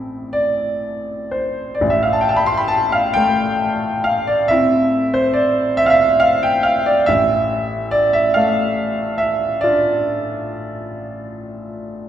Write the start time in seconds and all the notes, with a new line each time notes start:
Already playing: A1 C4 E4 A5
0.33 D5
1.31 C5
1.75 D5
1.81 A1
1.90 E5
2.03 F5
2.13 A5
2.21 G5
2.29 A5
2.36 B5
2.46 C6
2.57 B5
2.68 A5
2.92 F5
3.14 A3 G5
4.04 F5
4.27 D5
4.48 C4 E4 E5
5.14 C5
5.33 D5
5.77 E5
5.86 F5
5.90 E5
6.20 F5
6.43 G5
6.63 F5
6.86 D5
7.06 A1 E5
7.91 D5
8.13 E5
8.34 A3 F5
9.18 E5
9.61 D4 F4 D5